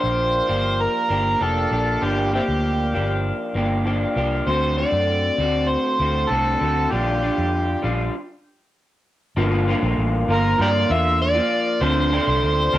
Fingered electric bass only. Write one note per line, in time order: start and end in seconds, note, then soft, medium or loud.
0.03 0.40 A#1 medium
0.49 0.86 G1 medium
1.10 1.35 G1 medium
1.41 1.65 F1 medium
1.71 1.96 A#1 medium
2.02 2.39 G1 medium
2.48 2.96 D2 medium
2.94 3.31 G1 medium
3.55 4.04 G1 loud
4.16 4.41 C2 medium
4.47 4.83 D2 loud
4.92 5.29 F#2 medium
5.38 5.75 D2 medium
6.00 6.24 D2 loud
6.30 6.55 C2 medium
6.61 6.86 D2 medium
6.92 7.29 A#1 loud
7.38 7.75 F2 medium
7.84 8.08 A#1 medium
9.37 9.73 G1 loud
9.83 9.95 A#1 loud
9.98 10.23 A1 medium
10.28 10.53 G1 medium
10.59 10.84 G2 medium
10.90 11.39 E2 medium
11.81 12.18 D2 loud
12.27 12.40 C2 medium
12.43 12.67 D2 medium
12.73 12.78 D2 medium